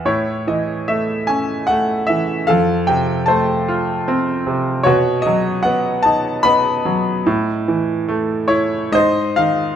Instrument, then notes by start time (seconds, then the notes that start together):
grand piano
0.05 A2 E4 C#5
0.47 E3 D#5
0.88 A3 E5
1.27 C#4 G#5
1.67 A3 F#5
2.07 E3 E5
2.47 F2 A4 F5
2.87 C3 G5
3.26 A3 C5 A5
3.68 F4
4.08 C4
4.47 C3
4.83 B2 F#4 C#5
5.22 D#5
5.26 F#3
5.63 B3 F#5
6.03 D#4 A5
6.43 B3 D#5 B5
6.85 F#3
7.26 A2
7.68 E3
8.09 A3
8.48 E4 C#5
8.92 G#2 C5 D#5
9.36 D#3 F5